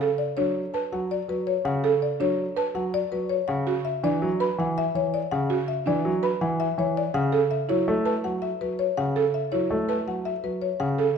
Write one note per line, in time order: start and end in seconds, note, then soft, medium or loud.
0.01 0.25 A4 medium
0.18 0.43 D5 medium
0.37 0.62 F#3 medium
0.37 0.61 D4 medium
0.37 0.61 C#5 medium
0.74 0.98 B4 medium
0.74 0.98 A5 soft
0.92 1.16 F#3 medium
0.92 1.16 F#5 soft
1.11 1.35 D5 medium
1.28 1.53 F#3 medium
1.28 1.53 B4 medium
1.47 1.71 C#5 medium
1.65 1.89 C#3 medium
1.65 1.89 F#5 medium
1.84 2.08 A4 medium
2.02 2.26 D5 medium
2.20 2.44 F#3 medium
2.20 2.44 D4 medium
2.20 2.44 C#5 medium
2.57 2.81 B4 medium
2.57 2.81 A5 medium
2.74 2.99 F#3 medium
2.74 2.99 F#5 medium
2.94 3.18 D5 medium
3.12 3.36 F#3 medium
3.12 3.36 B4 medium
3.29 3.54 C#5 medium
3.48 3.72 C#3 medium
3.48 3.72 F#5 medium
3.67 3.91 F#4 medium
3.85 4.09 E5 medium
4.03 4.27 E3 medium
4.03 4.27 D4 medium
4.03 4.27 D5 medium
4.22 4.46 F#3 medium
4.40 4.64 B4 medium
4.40 4.64 B5 medium
4.58 4.82 E3 medium
4.58 4.83 F#5 medium
4.78 5.01 E5 medium
4.95 5.19 E3 medium
4.95 5.19 C#5 medium
5.14 5.37 D5 medium
5.31 5.56 C#3 medium
5.31 5.55 F#5 medium
5.50 5.74 F#4 medium
5.68 5.92 E5 medium
5.86 6.10 E3 medium
5.86 6.10 D4 medium
5.86 6.10 D5 medium
6.05 6.29 F#3 medium
6.23 6.47 B4 medium
6.23 6.47 B5 medium
6.41 6.65 E3 medium
6.41 6.65 F#5 medium
6.60 6.84 E5 medium
6.78 7.02 E3 medium
6.78 7.02 C#5 medium
6.97 7.20 D5 medium
7.14 7.38 C#3 medium
7.14 7.38 F#5 medium
7.32 7.56 A4 medium
7.51 7.75 E5 medium
7.69 7.93 F#3 medium
7.69 7.93 E4 medium
7.69 7.93 C#5 medium
7.88 8.12 A3 medium
8.05 8.30 B4 medium
8.05 8.30 A5 medium
8.24 8.48 F#3 medium
8.24 8.48 F#5 medium
8.42 8.66 E5 medium
8.61 8.85 F#3 soft
8.61 8.85 B4 medium
8.79 9.03 C#5 medium
8.97 9.21 C#3 medium
8.97 9.21 F#5 medium
9.16 9.40 A4 medium
9.34 9.58 E5 medium
9.52 9.76 F#3 medium
9.52 9.76 E4 medium
9.52 9.76 C#5 medium
9.71 9.94 A3 medium
9.89 10.13 B4 medium
9.89 10.13 A5 medium
10.07 10.31 F#3 soft
10.07 10.31 F#5 medium
10.25 10.49 E5 medium
10.43 10.67 F#3 soft
10.43 10.68 B4 soft
10.62 10.86 C#5 soft
10.80 11.04 C#3 medium
10.80 11.04 F#5 medium
10.99 11.18 A4 medium